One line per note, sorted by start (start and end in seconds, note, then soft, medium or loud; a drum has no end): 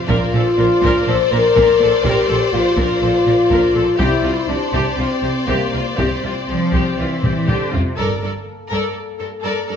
0.08 0.17 A#1 medium
0.08 0.16 A#2 medium
0.08 1.04 F4 medium
0.08 0.32 A#4 medium
0.08 3.95 C5 medium
0.08 3.96 D5 medium
0.08 taiko medium
0.33 0.41 A#1 soft
0.33 0.41 A#2 soft
0.33 0.44 A4 soft
0.58 0.66 A#1 soft
0.58 0.66 A#2 soft
0.58 0.67 A#4 soft
0.82 0.91 A#1 medium
0.82 0.90 A#2 medium
0.82 1.06 A#4 medium
0.82 taiko medium
1.07 1.15 A#1 soft
1.07 1.16 A#2 soft
1.07 1.17 A4 soft
1.07 1.33 C5 medium
1.31 1.40 A#1 medium
1.31 1.39 A#2 soft
1.31 2.04 A#4 medium
1.31 1.40 A#4 medium
1.56 1.64 A#1 medium
1.56 1.64 A#2 medium
1.56 1.79 A#4 medium
1.56 taiko medium
1.80 1.89 A#1 soft
1.80 1.88 A#2 soft
1.80 1.91 A4 medium
2.04 2.12 A#1 medium
2.04 2.12 A#2 medium
2.04 2.52 G4 medium
2.04 2.28 A#4 medium
2.04 taiko medium
2.29 2.37 A#1 soft
2.29 2.37 A#2 soft
2.29 2.37 A4 soft
2.53 2.61 A#1 soft
2.53 2.61 A#2 soft
2.53 4.00 F4 medium
2.53 2.62 A#4 soft
2.77 2.85 A#1 medium
2.77 2.85 A#2 medium
2.77 3.00 A#4 medium
2.77 taiko medium
3.02 3.10 A#1 soft
3.02 3.10 A#2 soft
3.02 3.10 A4 soft
3.26 3.34 A#1 soft
3.26 3.34 A#2 soft
3.26 3.34 A#4 soft
3.50 3.58 A#1 medium
3.50 3.58 A#2 medium
3.50 3.74 A#4 medium
3.50 taiko medium
3.75 3.83 A#1 soft
3.75 3.83 A#2 soft
3.75 3.83 A4 soft
3.98 4.07 C2 medium
3.98 4.07 C3 medium
3.98 4.47 E4 medium
3.98 4.22 G4 medium
3.98 7.73 C5 soft
3.98 7.73 D5 soft
3.98 taiko medium
4.24 4.32 C2 soft
4.24 4.32 C3 soft
4.24 4.32 F4 soft
4.47 4.56 C2 soft
4.47 4.57 C3 soft
4.47 4.97 D4 medium
4.47 4.57 G4 soft
4.73 4.81 C2 soft
4.73 4.81 C3 medium
4.73 4.97 G4 soft
4.73 taiko medium
4.96 5.06 C2 soft
4.96 5.06 C3 soft
4.96 5.46 C4 medium
4.96 5.07 F4 soft
5.22 5.31 C2 soft
5.22 5.30 C3 soft
5.22 5.30 G4 soft
5.45 5.56 C2 soft
5.45 5.56 C3 soft
5.45 5.97 A#3 soft
5.45 5.71 G4 soft
5.45 taiko medium
5.73 5.81 C2 soft
5.73 5.81 C3 soft
5.73 5.81 F4 soft
5.96 6.06 C2 soft
5.96 6.07 C3 soft
5.96 7.72 C4 soft
5.96 6.21 G4 soft
5.96 taiko medium
6.24 6.32 C2 soft
6.24 6.32 C3 soft
6.24 6.32 F4 soft
6.48 6.58 C2 soft
6.48 6.94 F3 soft
6.48 6.57 G4 soft
6.73 6.82 C2 soft
6.73 6.96 G4 soft
6.73 taiko medium
6.99 7.08 C2 soft
6.99 7.48 E3 soft
6.99 7.07 F4 soft
7.23 7.33 C2 soft
7.23 7.32 G4 soft
7.23 taiko low-mid medium
7.48 7.57 C2 soft
7.48 7.73 D3 soft
7.48 7.71 G4 soft
7.48 taiko low-mid medium
7.72 7.83 C2 soft
7.72 7.98 C3 soft
7.72 7.80 F4 soft
7.72 taiko low medium
7.96 8.22 G1 soft
7.96 8.06 G2 soft
7.96 9.76 A#3 soft
7.96 8.20 A4 soft
7.96 9.76 A4 soft
7.96 8.21 A#4 soft
7.96 8.21 D5 soft
7.96 taiko soft
8.22 8.31 G2 soft
8.22 8.30 A4 soft
8.22 8.31 A#4 soft
8.22 8.32 D5 soft
8.71 8.79 G2 soft
8.71 8.94 A4 soft
8.71 8.94 A#4 soft
8.71 8.95 D5 soft
8.71 taiko soft
9.19 9.29 G2 soft
9.19 9.27 A4 soft
9.19 9.28 A4 soft
9.19 9.30 A#4 soft
9.43 9.52 G2 soft
9.43 9.66 A4 soft
9.43 9.67 A#4 soft
9.43 9.67 D5 soft
9.68 9.76 G2 soft
9.68 9.76 A4 soft
9.68 9.76 A#4 soft
9.68 9.76 D5 soft